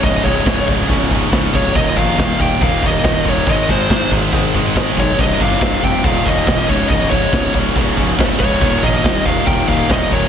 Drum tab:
CC |xxxxxxxx|xxxxxxxx|xxxxxxxx|xxxxxxxx|
SD |--o---o-|--o---o-|--o---o-|--o---o-|
BD |oooooooo|oooooooo|oooooooo|oooooooo|

CC |xxxxxxxx|xxxxxxxx|
SD |--o---o-|--o---o-|
BD |oooooooo|oooooooo|